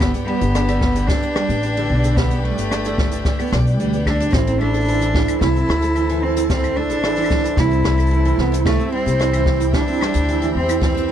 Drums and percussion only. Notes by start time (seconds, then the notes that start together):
0.01 kick, claves, shaker
0.14 closed hi-hat, shaker
0.41 closed hi-hat, shaker
0.55 cross-stick, shaker
0.68 closed hi-hat, claves, shaker
0.81 kick
0.95 closed hi-hat, shaker
1.09 kick, shaker
1.22 shaker
1.36 cross-stick, claves
1.50 closed hi-hat, shaker
1.63 shaker
1.77 closed hi-hat, shaker
2.04 closed hi-hat, shaker
2.17 kick, shaker
2.30 closed hi-hat, shaker
2.58 closed hi-hat, shaker
2.71 cross-stick, claves, shaker
2.84 closed hi-hat, shaker
2.98 kick
3.11 closed hi-hat, shaker
3.25 kick, shaker
3.39 claves, shaker
3.47 shaker
3.52 kick, cross-stick, shaker
3.61 shaker
3.67 shaker
3.80 shaker
3.93 closed hi-hat, shaker
4.06 kick, claves
4.21 closed hi-hat, shaker
4.30 kick, closed hi-hat
4.35 shaker
4.39 closed hi-hat
4.47 closed hi-hat, shaker
4.62 claves
4.74 closed hi-hat, shaker
4.80 shaker
4.85 shaker
4.89 shaker
4.94 shaker
4.98 shaker
5.01 closed hi-hat, shaker
5.15 kick
5.28 closed hi-hat, claves, shaker
5.41 kick, shaker
5.57 shaker
5.70 cross-stick
5.82 closed hi-hat, shaker
5.95 claves, shaker
6.09 closed hi-hat, shaker
6.37 closed hi-hat, shaker
6.50 kick, shaker
6.64 closed hi-hat, claves, shaker
6.89 closed hi-hat, shaker
7.03 cross-stick, shaker
7.08 shaker
7.12 shaker
7.15 closed hi-hat, shaker
7.19 shaker
7.22 claves, shaker
7.25 shaker
7.29 kick, shaker
7.45 closed hi-hat, shaker
7.57 kick, shaker
7.72 shaker
7.84 kick, cross-stick
7.99 closed hi-hat, claves
8.06 shaker
8.13 shaker
8.26 closed hi-hat, shaker
8.38 kick
8.53 closed hi-hat, shaker
8.66 kick, claves, shaker
8.80 shaker
9.07 closed hi-hat, shaker
9.20 cross-stick, shaker
9.33 closed hi-hat, claves, shaker
9.46 kick
9.60 closed hi-hat, shaker
9.73 kick, shaker
9.88 shaker
9.93 shaker
9.97 shaker
10.01 cross-stick, claves, shaker
10.10 closed hi-hat, shaker
10.15 shaker
10.29 shaker
10.42 closed hi-hat, shaker
10.69 closed hi-hat, claves, shaker
10.82 kick, shaker
10.97 closed hi-hat, shaker